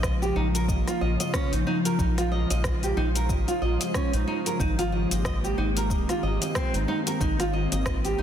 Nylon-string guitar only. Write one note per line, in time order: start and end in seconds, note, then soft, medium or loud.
0.03 0.14 D#5 medium
0.22 0.35 G4 medium
0.36 0.47 D#4 medium
0.55 0.63 A#4 loud
0.68 0.86 D#5 medium
0.87 1.00 F4 loud
1.01 1.19 D#5 medium
1.20 1.33 D#5 medium
1.34 1.51 C#4 loud
1.53 1.65 D#4 medium
1.67 1.77 D#4 medium
1.85 1.93 A#4 loud
1.99 2.16 D#4 medium
2.18 2.30 F4 medium
2.32 2.49 D#5 medium
2.50 2.63 D#5 medium
2.64 2.75 D#5 medium
2.83 2.96 G4 medium
2.97 3.08 D#4 loud
3.16 3.24 A#4 loud
3.29 3.46 D#5 medium
3.48 3.61 F4 medium
3.62 3.80 D#5 medium
3.81 3.94 D#5 medium
3.95 4.12 C#4 medium
4.14 4.26 D#4 medium
4.27 4.38 D#4 medium
4.46 4.54 A#4 medium
4.60 4.77 D#4 loud
4.79 4.91 F4 loud
4.92 5.10 D#5 medium
5.11 5.24 D#5 medium
5.25 5.36 D#5 medium
5.44 5.57 G4 medium
5.58 5.69 D#4 loud
5.77 5.85 A#4 loud
5.91 6.08 D#5 medium
6.09 6.22 F4 medium
6.23 6.41 D#5 medium
6.42 6.55 D#5 medium
6.56 6.73 C4 loud
6.75 6.87 D#4 medium
6.88 6.99 D#4 loud
7.07 7.15 A#4 loud
7.21 7.38 D#4 loud
7.40 7.52 F4 loud
7.53 7.71 D#5 medium
7.72 7.85 D#5 medium
7.86 7.97 D#5 medium
8.05 8.18 G4 medium
8.18 8.22 D#4 loud